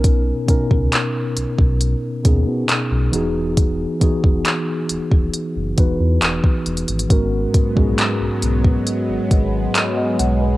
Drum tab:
HH |x---x---x---x---x---x---x---x---|x---x---x---x---x---x---x---xxxx|x---x---x---x---x---x---x---x---|
CP |--------x---------------x-------|--------x---------------x-------|--------x---------------x-------|
BD |o---o-o-------o-----o-----------|o---o-o-------o-----o-----o-----|o---o-o-------o-----o-----------|